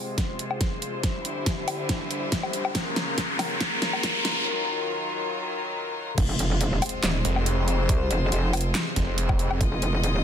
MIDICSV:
0, 0, Header, 1, 7, 480
1, 0, Start_track
1, 0, Tempo, 428571
1, 1159, Time_signature, 4, 2, 24, 8
1, 11467, End_track
2, 0, Start_track
2, 0, Title_t, "String section"
2, 0, Program_c, 0, 48
2, 0, Note_on_c, 0, 48, 74
2, 0, Note_on_c, 0, 56, 69
2, 0, Note_on_c, 0, 65, 69
2, 0, Note_on_c, 0, 72, 84
2, 1139, Note_off_c, 0, 56, 0
2, 1140, Note_off_c, 0, 48, 0
2, 1140, Note_off_c, 0, 65, 0
2, 1159, Note_on_c, 0, 50, 77
2, 1159, Note_on_c, 0, 55, 68
2, 1159, Note_on_c, 0, 64, 71
2, 3040, Note_off_c, 0, 72, 0
2, 3060, Note_off_c, 0, 50, 0
2, 3060, Note_off_c, 0, 55, 0
2, 3060, Note_off_c, 0, 64, 0
2, 3078, Note_on_c, 0, 49, 79
2, 3078, Note_on_c, 0, 58, 72
2, 3079, Note_on_c, 0, 65, 74
2, 3079, Note_on_c, 0, 70, 86
2, 4979, Note_off_c, 0, 49, 0
2, 4979, Note_off_c, 0, 58, 0
2, 4998, Note_on_c, 0, 51, 78
2, 4998, Note_on_c, 0, 54, 74
2, 6880, Note_off_c, 0, 65, 0
2, 6881, Note_off_c, 0, 70, 0
2, 6899, Note_off_c, 0, 51, 0
2, 6899, Note_off_c, 0, 54, 0
2, 6917, Note_on_c, 0, 72, 86
2, 6918, Note_on_c, 0, 48, 81
2, 6918, Note_on_c, 0, 56, 75
2, 6918, Note_on_c, 0, 65, 73
2, 10745, Note_off_c, 0, 72, 0
2, 10761, Note_on_c, 0, 75, 90
2, 11467, Note_off_c, 0, 48, 0
2, 11467, Note_off_c, 0, 56, 0
2, 11467, Note_off_c, 0, 65, 0
2, 11467, Note_off_c, 0, 75, 0
2, 11467, End_track
3, 0, Start_track
3, 0, Title_t, "Detuned saw bass"
3, 0, Program_c, 1, 39
3, 8119, Note_on_c, 1, 29, 101
3, 8821, Note_off_c, 1, 29, 0
3, 10039, Note_on_c, 1, 29, 101
3, 10741, Note_off_c, 1, 29, 0
3, 11467, End_track
4, 0, Start_track
4, 0, Title_t, "Wobble bass"
4, 0, Program_c, 2, 39
4, 6919, Note_on_c, 2, 29, 95
4, 7412, Note_off_c, 2, 29, 0
4, 7412, Note_on_c, 2, 28, 95
4, 7621, Note_off_c, 2, 28, 0
4, 7879, Note_on_c, 2, 27, 99
4, 8101, Note_off_c, 2, 27, 0
4, 8839, Note_on_c, 2, 36, 97
4, 9061, Note_off_c, 2, 36, 0
4, 9079, Note_on_c, 2, 29, 101
4, 9301, Note_off_c, 2, 29, 0
4, 9320, Note_on_c, 2, 29, 100
4, 9781, Note_off_c, 2, 29, 0
4, 10759, Note_on_c, 2, 29, 94
4, 11252, Note_off_c, 2, 29, 0
4, 11252, Note_on_c, 2, 28, 94
4, 11461, Note_off_c, 2, 28, 0
4, 11467, End_track
5, 0, Start_track
5, 0, Title_t, "Impact"
5, 0, Program_c, 3, 103
5, 6919, Note_on_c, 3, 60, 75
5, 8839, Note_off_c, 3, 60, 0
5, 11467, End_track
6, 0, Start_track
6, 0, Title_t, "Riser"
6, 0, Program_c, 4, 103
6, 0, Note_on_c, 4, 60, 79
6, 4999, Note_off_c, 4, 60, 0
6, 11467, End_track
7, 0, Start_track
7, 0, Title_t, "Drums"
7, 199, Note_on_c, 9, 36, 90
7, 199, Note_on_c, 9, 38, 53
7, 199, Note_on_c, 9, 42, 77
7, 311, Note_off_c, 9, 36, 0
7, 311, Note_off_c, 9, 38, 0
7, 311, Note_off_c, 9, 42, 0
7, 439, Note_on_c, 9, 42, 54
7, 551, Note_off_c, 9, 42, 0
7, 567, Note_on_c, 9, 77, 48
7, 679, Note_off_c, 9, 77, 0
7, 679, Note_on_c, 9, 36, 93
7, 679, Note_on_c, 9, 38, 51
7, 679, Note_on_c, 9, 42, 79
7, 791, Note_off_c, 9, 36, 0
7, 791, Note_off_c, 9, 38, 0
7, 791, Note_off_c, 9, 42, 0
7, 919, Note_on_c, 9, 42, 54
7, 1031, Note_off_c, 9, 42, 0
7, 1159, Note_on_c, 9, 36, 90
7, 1159, Note_on_c, 9, 38, 54
7, 1159, Note_on_c, 9, 42, 76
7, 1271, Note_off_c, 9, 36, 0
7, 1271, Note_off_c, 9, 38, 0
7, 1271, Note_off_c, 9, 42, 0
7, 1399, Note_on_c, 9, 42, 54
7, 1511, Note_off_c, 9, 42, 0
7, 1639, Note_on_c, 9, 36, 94
7, 1639, Note_on_c, 9, 38, 62
7, 1639, Note_on_c, 9, 42, 77
7, 1751, Note_off_c, 9, 36, 0
7, 1751, Note_off_c, 9, 38, 0
7, 1751, Note_off_c, 9, 42, 0
7, 1878, Note_on_c, 9, 46, 84
7, 1878, Note_on_c, 9, 77, 72
7, 1990, Note_off_c, 9, 46, 0
7, 1990, Note_off_c, 9, 77, 0
7, 2118, Note_on_c, 9, 38, 62
7, 2118, Note_on_c, 9, 42, 76
7, 2119, Note_on_c, 9, 36, 95
7, 2230, Note_off_c, 9, 38, 0
7, 2230, Note_off_c, 9, 42, 0
7, 2231, Note_off_c, 9, 36, 0
7, 2358, Note_on_c, 9, 42, 51
7, 2470, Note_off_c, 9, 42, 0
7, 2599, Note_on_c, 9, 36, 95
7, 2599, Note_on_c, 9, 38, 69
7, 2599, Note_on_c, 9, 42, 80
7, 2711, Note_off_c, 9, 36, 0
7, 2711, Note_off_c, 9, 38, 0
7, 2711, Note_off_c, 9, 42, 0
7, 2726, Note_on_c, 9, 77, 46
7, 2838, Note_off_c, 9, 77, 0
7, 2838, Note_on_c, 9, 42, 52
7, 2950, Note_off_c, 9, 42, 0
7, 2966, Note_on_c, 9, 77, 71
7, 3078, Note_off_c, 9, 77, 0
7, 3078, Note_on_c, 9, 38, 73
7, 3078, Note_on_c, 9, 42, 75
7, 3079, Note_on_c, 9, 36, 94
7, 3190, Note_off_c, 9, 38, 0
7, 3190, Note_off_c, 9, 42, 0
7, 3191, Note_off_c, 9, 36, 0
7, 3319, Note_on_c, 9, 38, 79
7, 3319, Note_on_c, 9, 42, 51
7, 3431, Note_off_c, 9, 38, 0
7, 3431, Note_off_c, 9, 42, 0
7, 3559, Note_on_c, 9, 36, 99
7, 3559, Note_on_c, 9, 38, 77
7, 3559, Note_on_c, 9, 42, 76
7, 3671, Note_off_c, 9, 36, 0
7, 3671, Note_off_c, 9, 38, 0
7, 3671, Note_off_c, 9, 42, 0
7, 3798, Note_on_c, 9, 38, 78
7, 3798, Note_on_c, 9, 46, 90
7, 3798, Note_on_c, 9, 77, 76
7, 3910, Note_off_c, 9, 38, 0
7, 3910, Note_off_c, 9, 46, 0
7, 3910, Note_off_c, 9, 77, 0
7, 4038, Note_on_c, 9, 38, 84
7, 4038, Note_on_c, 9, 42, 76
7, 4039, Note_on_c, 9, 36, 95
7, 4150, Note_off_c, 9, 38, 0
7, 4150, Note_off_c, 9, 42, 0
7, 4151, Note_off_c, 9, 36, 0
7, 4278, Note_on_c, 9, 38, 86
7, 4278, Note_on_c, 9, 42, 51
7, 4390, Note_off_c, 9, 38, 0
7, 4390, Note_off_c, 9, 42, 0
7, 4406, Note_on_c, 9, 77, 52
7, 4518, Note_off_c, 9, 77, 0
7, 4518, Note_on_c, 9, 38, 86
7, 4518, Note_on_c, 9, 42, 77
7, 4519, Note_on_c, 9, 36, 100
7, 4630, Note_off_c, 9, 38, 0
7, 4630, Note_off_c, 9, 42, 0
7, 4631, Note_off_c, 9, 36, 0
7, 4759, Note_on_c, 9, 38, 86
7, 4759, Note_on_c, 9, 42, 52
7, 4871, Note_off_c, 9, 38, 0
7, 4871, Note_off_c, 9, 42, 0
7, 6919, Note_on_c, 9, 36, 119
7, 6919, Note_on_c, 9, 42, 81
7, 6919, Note_on_c, 9, 49, 98
7, 7031, Note_off_c, 9, 36, 0
7, 7031, Note_off_c, 9, 42, 0
7, 7031, Note_off_c, 9, 49, 0
7, 7159, Note_on_c, 9, 42, 58
7, 7271, Note_off_c, 9, 42, 0
7, 7399, Note_on_c, 9, 42, 59
7, 7511, Note_off_c, 9, 42, 0
7, 7639, Note_on_c, 9, 46, 91
7, 7639, Note_on_c, 9, 77, 76
7, 7681, Note_on_c, 9, 42, 68
7, 7719, Note_off_c, 9, 42, 0
7, 7719, Note_on_c, 9, 42, 81
7, 7751, Note_off_c, 9, 46, 0
7, 7751, Note_off_c, 9, 77, 0
7, 7831, Note_off_c, 9, 42, 0
7, 7879, Note_on_c, 9, 38, 121
7, 7879, Note_on_c, 9, 39, 97
7, 7879, Note_on_c, 9, 42, 84
7, 7991, Note_off_c, 9, 38, 0
7, 7991, Note_off_c, 9, 39, 0
7, 7991, Note_off_c, 9, 42, 0
7, 8119, Note_on_c, 9, 42, 82
7, 8231, Note_off_c, 9, 42, 0
7, 8246, Note_on_c, 9, 77, 52
7, 8358, Note_off_c, 9, 77, 0
7, 8358, Note_on_c, 9, 42, 85
7, 8470, Note_off_c, 9, 42, 0
7, 8599, Note_on_c, 9, 42, 56
7, 8711, Note_off_c, 9, 42, 0
7, 8838, Note_on_c, 9, 42, 79
7, 8839, Note_on_c, 9, 36, 120
7, 8950, Note_off_c, 9, 42, 0
7, 8951, Note_off_c, 9, 36, 0
7, 9079, Note_on_c, 9, 42, 55
7, 9191, Note_off_c, 9, 42, 0
7, 9319, Note_on_c, 9, 42, 56
7, 9431, Note_off_c, 9, 42, 0
7, 9558, Note_on_c, 9, 46, 89
7, 9558, Note_on_c, 9, 77, 77
7, 9602, Note_on_c, 9, 42, 65
7, 9639, Note_off_c, 9, 42, 0
7, 9639, Note_on_c, 9, 42, 84
7, 9670, Note_off_c, 9, 46, 0
7, 9670, Note_off_c, 9, 77, 0
7, 9751, Note_off_c, 9, 42, 0
7, 9799, Note_on_c, 9, 38, 127
7, 9799, Note_on_c, 9, 39, 93
7, 9799, Note_on_c, 9, 42, 81
7, 9911, Note_off_c, 9, 38, 0
7, 9911, Note_off_c, 9, 39, 0
7, 9911, Note_off_c, 9, 42, 0
7, 10039, Note_on_c, 9, 36, 64
7, 10039, Note_on_c, 9, 38, 38
7, 10039, Note_on_c, 9, 42, 81
7, 10151, Note_off_c, 9, 36, 0
7, 10151, Note_off_c, 9, 38, 0
7, 10151, Note_off_c, 9, 42, 0
7, 10279, Note_on_c, 9, 42, 83
7, 10391, Note_off_c, 9, 42, 0
7, 10407, Note_on_c, 9, 36, 113
7, 10407, Note_on_c, 9, 77, 51
7, 10519, Note_off_c, 9, 36, 0
7, 10519, Note_off_c, 9, 77, 0
7, 10519, Note_on_c, 9, 42, 54
7, 10631, Note_off_c, 9, 42, 0
7, 10647, Note_on_c, 9, 77, 75
7, 10759, Note_off_c, 9, 77, 0
7, 10759, Note_on_c, 9, 36, 127
7, 10760, Note_on_c, 9, 42, 77
7, 10871, Note_off_c, 9, 36, 0
7, 10872, Note_off_c, 9, 42, 0
7, 10999, Note_on_c, 9, 42, 56
7, 11111, Note_off_c, 9, 42, 0
7, 11240, Note_on_c, 9, 42, 53
7, 11352, Note_off_c, 9, 42, 0
7, 11467, End_track
0, 0, End_of_file